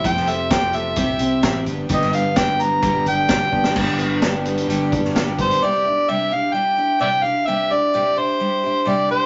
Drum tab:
CC |----------------|----------------|x---------------|----------------|
HH |x-x-x-x-x-x-x-x-|x-x-x-x-x-x-x---|--x-x-xxx-x-x-xx|----------------|
SD |-o--o-------o---|-o--o-------o--o|----o------oo---|----------------|
BD |o---o---o---o---|o---o---o---o-o-|o---------o---o-|----------------|

CC |----------------|
HH |----------------|
SD |----------------|
BD |----------------|